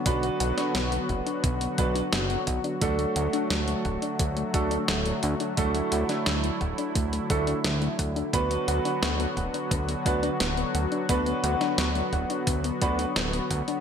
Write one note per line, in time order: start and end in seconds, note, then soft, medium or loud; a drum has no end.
0.00 2.78 D3 medium
0.00 8.30 F#3 medium
0.00 2.78 B3 medium
0.00 5.54 F#4 medium
0.06 0.30 B1 loud
0.06 0.15 B3 loud
0.06 1.74 B3 medium
0.06 1.74 D4 medium
0.06 1.74 F#4 medium
0.06 1.74 B4 medium
0.06 kick loud
0.06 closed hi-hat medium
0.23 0.29 B3 medium
0.23 closed hi-hat soft
0.40 0.53 B1 medium
0.40 0.55 F#5 medium
0.40 closed hi-hat medium
0.58 0.67 D4 loud
0.58 snare soft
0.58 closed hi-hat soft
0.75 0.99 B1 medium
0.75 0.84 B3 loud
0.75 snare loud
0.75 closed hi-hat medium
0.92 0.98 B3 medium
0.92 closed hi-hat soft
1.09 1.22 F#1 medium
1.09 1.24 F#5 medium
1.09 kick medium
1.09 closed hi-hat soft
1.26 1.36 D4 loud
1.26 closed hi-hat soft
1.44 1.68 B1 medium
1.44 1.53 B3 loud
1.44 kick loud
1.44 closed hi-hat medium
1.61 1.67 B3 medium
1.61 closed hi-hat soft
1.78 2.03 B1 medium
1.78 1.98 B3 medium
1.78 1.99 D4 medium
1.78 1.99 F#4 medium
1.78 1.99 B4 medium
1.78 1.92 F#5 medium
1.78 kick loud
1.78 closed hi-hat medium
1.95 2.05 D4 loud
1.95 closed hi-hat soft
2.12 2.37 F#1 medium
2.12 2.22 B3 loud
2.12 snare loud
2.12 closed hi-hat loud
2.30 2.36 B3 medium
2.30 closed hi-hat soft
2.47 2.59 B1 loud
2.47 2.61 F#5 medium
2.47 kick medium
2.47 closed hi-hat medium
2.64 2.74 D4 loud
2.64 closed hi-hat soft
2.81 3.06 D2 loud
2.81 13.80 D3 medium
2.81 2.91 A3 loud
2.81 4.50 A3 medium
2.81 8.30 A3 medium
2.81 4.50 D4 medium
2.81 4.50 F#4 medium
2.81 4.50 A4 medium
2.81 kick loud
2.81 closed hi-hat medium
2.99 3.05 A3 medium
2.99 closed hi-hat soft
3.16 3.28 D2 medium
3.16 3.30 F#5 medium
3.16 closed hi-hat medium
3.33 3.43 D4 loud
3.33 closed hi-hat soft
3.50 3.75 D2 medium
3.50 3.60 A3 loud
3.50 snare loud
3.50 closed hi-hat medium
3.68 3.74 A3 medium
3.68 closed hi-hat soft
3.85 3.97 D1 loud
3.85 3.99 F#5 medium
3.85 kick medium
3.85 closed hi-hat soft
4.02 4.12 D4 loud
4.02 closed hi-hat soft
4.19 4.44 D2 medium
4.19 4.29 A3 loud
4.19 kick loud
4.19 closed hi-hat medium
4.37 4.42 A3 medium
4.37 closed hi-hat soft
4.54 4.78 D2 loud
4.54 4.74 A3 medium
4.54 4.74 D4 medium
4.54 4.74 F#4 medium
4.54 4.74 A4 medium
4.54 4.68 F#5 medium
4.54 kick loud
4.54 closed hi-hat medium
4.71 4.81 D4 loud
4.71 closed hi-hat soft
4.88 5.13 D1 medium
4.88 4.98 A3 loud
4.88 snare loud
4.88 closed hi-hat medium
5.06 5.12 A3 medium
5.06 closed hi-hat soft
5.23 5.35 D2 loud
5.23 5.37 F#5 medium
5.23 closed hi-hat medium
5.40 5.50 D4 loud
5.40 closed hi-hat soft
5.57 5.82 D2 loud
5.57 5.67 A3 loud
5.57 7.26 A3 medium
5.57 7.26 D4 medium
5.57 8.31 E4 medium
5.57 7.26 F#4 medium
5.57 7.26 A4 medium
5.57 kick loud
5.57 closed hi-hat medium
5.75 5.81 A3 medium
5.75 closed hi-hat soft
5.92 6.04 D2 medium
5.92 6.06 F#5 medium
5.92 closed hi-hat medium
6.09 6.19 D4 loud
6.09 snare soft
6.09 closed hi-hat soft
6.26 6.51 D2 medium
6.26 6.36 A3 loud
6.26 snare loud
6.26 closed hi-hat medium
6.44 6.50 A3 medium
6.44 closed hi-hat soft
6.61 6.73 D1 loud
6.61 6.75 F#5 medium
6.61 kick medium
6.61 closed hi-hat soft
6.78 6.88 D4 loud
6.78 closed hi-hat soft
6.95 7.20 D2 medium
6.95 7.05 A3 loud
6.95 kick loud
6.95 closed hi-hat medium
7.13 7.18 A3 medium
7.13 closed hi-hat soft
7.30 7.54 D2 loud
7.30 7.50 A3 medium
7.30 7.50 D4 medium
7.30 7.50 F#4 medium
7.30 7.50 A4 medium
7.30 7.44 F#5 medium
7.30 kick loud
7.30 closed hi-hat medium
7.47 7.57 D4 loud
7.47 closed hi-hat soft
7.64 7.89 D2 loud
7.64 7.74 A3 loud
7.64 snare loud
7.64 closed hi-hat medium
7.82 7.87 A3 medium
7.82 closed hi-hat soft
7.99 8.23 D2 medium
7.99 8.13 F#5 medium
7.99 kick medium
7.99 closed hi-hat medium
8.16 8.26 D4 loud
8.16 closed hi-hat soft
8.33 8.58 D2 loud
8.33 13.80 F#3 medium
8.33 8.43 B3 loud
8.33 10.02 B3 medium
8.33 13.80 B3 medium
8.33 10.02 D4 medium
8.33 10.02 F#4 medium
8.33 13.80 F#4 medium
8.33 10.02 B4 medium
8.33 kick loud
8.33 closed hi-hat medium
8.51 8.56 B3 medium
8.51 closed hi-hat soft
8.68 8.80 D2 medium
8.68 8.82 F#5 medium
8.68 closed hi-hat medium
8.85 8.95 D4 loud
8.85 closed hi-hat soft
9.02 9.27 D2 medium
9.02 9.12 B3 loud
9.02 snare loud
9.02 closed hi-hat medium
9.20 9.25 B3 medium
9.20 closed hi-hat soft
9.37 9.49 D1 medium
9.37 9.51 F#5 medium
9.37 kick medium
9.37 closed hi-hat soft
9.54 9.64 D4 loud
9.54 closed hi-hat soft
9.71 9.96 D2 medium
9.71 9.81 B3 loud
9.71 kick loud
9.71 closed hi-hat medium
9.88 9.94 B3 medium
9.88 closed hi-hat soft
10.06 10.30 D2 loud
10.06 10.26 B3 medium
10.06 10.26 D4 medium
10.06 10.26 F#4 medium
10.06 10.26 B4 medium
10.06 10.20 F#5 medium
10.06 kick loud
10.06 closed hi-hat medium
10.23 10.33 D4 loud
10.23 closed hi-hat soft
10.40 10.65 D1 medium
10.40 10.50 B3 loud
10.40 snare loud
10.40 closed hi-hat medium
10.57 10.63 B3 medium
10.57 closed hi-hat soft
10.75 10.87 D2 loud
10.75 10.89 F#5 medium
10.75 closed hi-hat medium
10.92 11.01 D4 loud
10.92 closed hi-hat soft
11.09 11.34 D2 loud
11.09 11.19 B3 loud
11.09 12.78 B3 medium
11.09 12.78 D4 medium
11.09 12.78 F#4 medium
11.09 12.78 B4 medium
11.09 kick loud
11.09 closed hi-hat medium
11.26 11.32 B3 medium
11.26 closed hi-hat soft
11.44 11.56 D2 medium
11.44 11.58 F#5 medium
11.44 closed hi-hat medium
11.61 11.71 D4 loud
11.61 snare soft
11.61 closed hi-hat soft
11.78 12.03 D2 medium
11.78 11.88 B3 loud
11.78 snare loud
11.78 closed hi-hat medium
11.95 12.01 B3 medium
11.95 closed hi-hat soft
12.13 12.25 D1 loud
12.13 12.27 F#5 medium
12.13 kick medium
12.13 closed hi-hat soft
12.30 12.40 D4 loud
12.30 closed hi-hat soft
12.47 12.72 D2 medium
12.47 12.57 B3 loud
12.47 kick loud
12.47 closed hi-hat medium
12.64 12.70 B3 medium
12.64 closed hi-hat soft
12.82 13.06 D2 loud
12.82 13.02 B3 medium
12.82 13.02 D4 medium
12.82 13.02 F#4 medium
12.82 13.02 B4 medium
12.82 12.96 F#5 medium
12.82 kick loud
12.82 closed hi-hat medium
12.99 13.08 D4 loud
12.99 closed hi-hat soft
13.16 13.40 D1 medium
13.16 13.26 B3 loud
13.16 snare loud
13.16 closed hi-hat medium
13.33 13.39 B3 medium
13.33 closed hi-hat soft
13.51 13.63 D2 loud
13.51 13.65 F#5 medium
13.51 kick medium
13.51 closed hi-hat medium
13.68 13.77 D4 loud
13.68 closed hi-hat soft